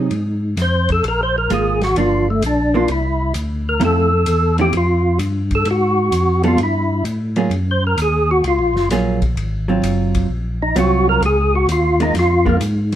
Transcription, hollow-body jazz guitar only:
Already playing: F#3 C4 D#4
1.50 G#3 A#3 F4
1.97 F3 A#3 D4
2.74 E3 A#3 D4
3.80 F3 A3 C4 E4
4.59 F3 A3 C4 E4
6.44 G3 B3 F4 A4
7.37 F#3 A#3 F4 G#4
8.91 F#3 A#3 F4 G#4
9.68 F#3 C4 F4
10.76 F#3 C4 F4
12.00 G#3 A#3 F4
12.45 G#3 A#3 F4

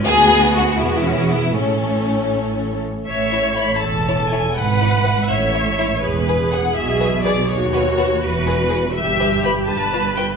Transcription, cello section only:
0.06 D2
0.79 E2
1.55 A2
3.08 A2
3.82 E2
4.57 G#2
5.30 A2
6.03 E2
6.77 B2
7.50 D#2
8.23 E2
8.96 G2
9.68 G2

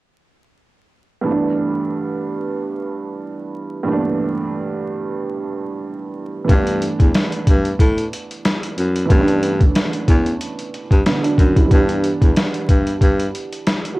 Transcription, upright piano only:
1.21 G2 E3
1.26 A3 B3
1.30 D4
3.83 G2 E3
3.88 A3 A#3
3.92 D4
3.96 B3
6.44 E3 A3
6.50 B3 D4
9.06 E3 A3
9.12 B3 C#4
9.21 D4
11.06 D3 B3
11.24 F#3 D4
11.56 G3 E4
11.66 E3 G3
11.72 B3 D4
13.94 F#3

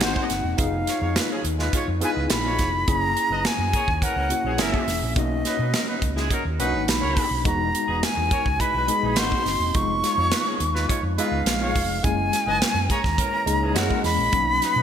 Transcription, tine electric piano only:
0.00 A#3 C4 D#4 E4
0.07 F#4
0.57 B3 D#4 F4 G#4
2.01 B3 D#4 E4 G#4
2.08 F4
2.87 A#3 C#4 E4 G#4
4.29 A#3 C#4 E4 F#4
4.58 A#3 C#4 E4 G#4
5.16 A#3 C#4 D#4 F#4
6.59 A#3 C#4 D4 F#4
6.66 D#4
7.44 G#3 B3 D#4 F#4
8.87 G#3 B3 D#4 G#4
9.17 A#3 B3 D#4 F#4
9.23 C4
9.74 G#3 B3 D#4 F4
11.18 G#3 B3 D#4 G#4
12.03 G#3 A#3 C#4 E4
13.46 G#3 A#3 C#4 D#4
13.75 G#3 A#3 C#4 E4
14.32 F#3 A#3 C#4 D#4

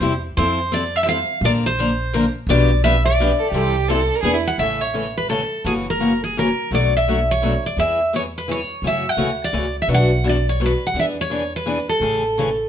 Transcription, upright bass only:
0.00 E2
0.37 F2
1.41 A#1
2.47 B1
3.52 C2
4.23 E2
4.58 A1
5.65 F#1
6.71 B1
7.77 E2
8.82 F#2
9.17 D2
9.53 C#2
9.88 B1
10.94 E2
12.00 A1

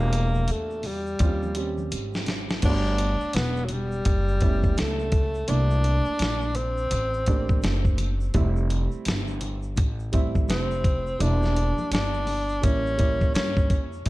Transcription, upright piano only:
Already playing: A#2 G3 D4 F#4
1.20 G3 C4 C#4 F4
1.55 G3 C4 C#4 G4
2.63 A3 B3 F#4 C#5
4.41 A3 B3 C#4 E4
5.48 A3 A#3 D4 E4
7.27 A3 A#3 D4 G4
8.34 G3 A3 C4 E4
10.12 G3 A3 C4 E4
11.19 G3 A#3 D4 E4
12.62 G3 A#3 C#4 E4
12.97 G3 A#3 C#4 E4
14.05 C4 F4

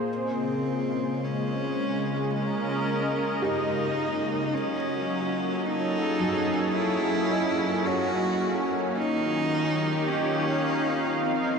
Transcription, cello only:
0.12 C4
1.24 C#4
2.35 C#4
3.44 D#4
4.55 C#4
5.66 D#4
6.74 E4
7.86 F#4
8.97 D#4
10.08 C#4
11.21 C4

